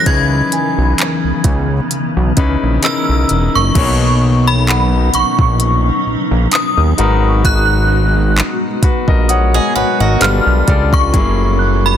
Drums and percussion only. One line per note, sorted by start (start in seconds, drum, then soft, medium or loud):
0.06 kick loud
0.06 closed hi-hat medium
0.52 closed hi-hat medium
0.98 clap loud
0.98 closed hi-hat medium
1.44 kick medium
1.44 closed hi-hat medium
1.91 closed hi-hat medium
2.37 kick medium
2.37 closed hi-hat medium
2.83 clap loud
2.83 closed hi-hat medium
3.29 closed hi-hat medium
3.75 kick loud
3.75 closed hi-hat medium
3.75 crash loud
4.69 clap loud
5.14 closed hi-hat medium
5.39 kick medium
5.60 closed hi-hat medium
6.51 clap loud
6.51 closed hi-hat medium
6.98 closed hi-hat medium
7.45 kick loud
7.45 closed hi-hat medium
8.38 clap loud
8.83 kick medium
8.83 closed hi-hat medium
9.08 kick medium
9.29 closed hi-hat medium
10.21 clap loud
10.21 closed hi-hat medium
10.68 kick loud
10.68 closed hi-hat medium
10.93 kick loud
11.14 kick loud
11.14 closed hi-hat medium